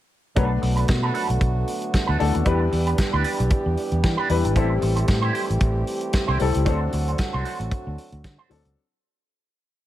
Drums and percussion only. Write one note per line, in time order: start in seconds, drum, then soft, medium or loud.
0.36 kick medium
0.36 closed hi-hat medium
0.63 open hi-hat medium
0.77 closed hi-hat soft
0.88 kick loud
0.88 snare loud
0.88 closed hi-hat medium
1.15 open hi-hat medium
1.30 closed hi-hat soft
1.41 kick loud
1.41 closed hi-hat medium
1.68 open hi-hat medium
1.82 closed hi-hat soft
1.94 kick loud
1.94 snare medium
1.94 closed hi-hat medium
2.20 open hi-hat medium
2.35 closed hi-hat soft
2.45 kick medium
2.45 closed hi-hat medium
2.72 open hi-hat medium
2.87 closed hi-hat soft
2.98 kick loud
2.98 snare loud
2.98 closed hi-hat medium
3.24 open hi-hat medium
3.40 closed hi-hat soft
3.50 kick loud
3.50 closed hi-hat medium
3.77 open hi-hat medium
3.92 closed hi-hat soft
4.03 kick loud
4.03 snare medium
4.03 closed hi-hat medium
4.29 open hi-hat medium
4.45 closed hi-hat soft
4.56 kick medium
4.56 closed hi-hat medium
4.82 open hi-hat medium
4.96 closed hi-hat soft
5.08 kick loud
5.08 snare loud
5.08 closed hi-hat medium
5.35 open hi-hat medium
5.50 closed hi-hat soft
5.60 kick loud
5.60 closed hi-hat medium
5.87 open hi-hat medium
6.01 closed hi-hat soft
6.13 kick loud
6.13 snare loud
6.13 closed hi-hat medium
6.40 open hi-hat medium
6.54 closed hi-hat soft
6.66 kick loud
6.66 closed hi-hat medium
6.92 open hi-hat medium
7.08 closed hi-hat soft
7.18 kick loud
7.18 snare loud
7.18 closed hi-hat medium
7.45 open hi-hat medium
7.61 closed hi-hat soft
7.71 kick loud
7.71 closed hi-hat soft
7.98 open hi-hat medium
8.12 closed hi-hat soft
8.24 kick loud
8.24 snare medium
8.24 closed hi-hat medium
8.51 open hi-hat medium
8.65 closed hi-hat soft